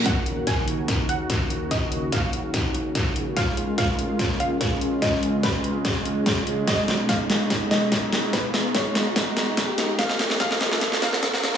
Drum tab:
HH |x-x-x-x-x-x-x-x-|x-x-x-x-x-x-x-x-|x-x-x-x-x-x-x-x-|x-x-x-x-x-x-x-x-|
SD |o---o---o---o---|o---o---o---o---|o---o---o---o---|o---o---o---o---|
BD |o---o---o---o---|o---o---o---o---|o---o---o---o---|o---o---o---o---|

HH |x-x-x-x-x-x-x-o-|x-x-x-x-x-x-x-o-|x-x-x-x-x-x-x-o-|
SD |o-o-o-o-o-o-o-o-|o-o-o-o-o-o-o-o-|oooooooooooooooo|
BD |o---o---o---o---|o---o---o---o---|o---o---o---o---|